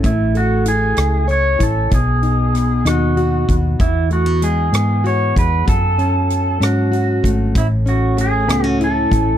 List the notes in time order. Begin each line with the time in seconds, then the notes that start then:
Already playing: C#4 E4 A4
0.03 A1 A3 E4, kick, closed hi-hat
0.35 F#4 A4, closed hi-hat
0.66 E4 G#4, closed hi-hat
0.97 C#2, cross-stick, closed hi-hat
1.28 C#5, closed hi-hat
1.59 A1 E4, kick, closed hi-hat
1.63 A4
1.90 B1 B2, kick, closed hi-hat
1.94 G#4
2.22 D#4, closed hi-hat
2.54 B3, cross-stick, closed hi-hat
2.85 D#2 D#4 F#4, cross-stick, closed hi-hat
3.17 F#4, closed hi-hat
3.48 D#2 B3, kick, closed hi-hat
3.80 E2 E3 E4, kick, closed hi-hat
4.11 A3 F#4, closed hi-hat
4.26 B3
4.42 G#3 G#4, closed hi-hat
4.72 G#2 B3, cross-stick, closed hi-hat
5.04 F#4 C#5, closed hi-hat
5.36 E2 G#3 B4, kick, closed hi-hat
5.66 F#2 F#3 A4, kick, closed hi-hat
5.98 C#4, closed hi-hat
6.30 closed hi-hat
6.60 G#2 C#4 F#4, cross-stick, closed hi-hat
6.92 F#4, closed hi-hat
7.23 G#1 A3, kick, closed hi-hat
7.55 A1 A2 E4, kick, closed hi-hat
7.86 C#4 F#4, closed hi-hat
8.17 A3 G#4, closed hi-hat
8.48 C#2 B3, cross-stick, closed hi-hat
8.64 C#4 F#4
8.80 E4 A4, closed hi-hat
9.11 A1 A3, kick, closed hi-hat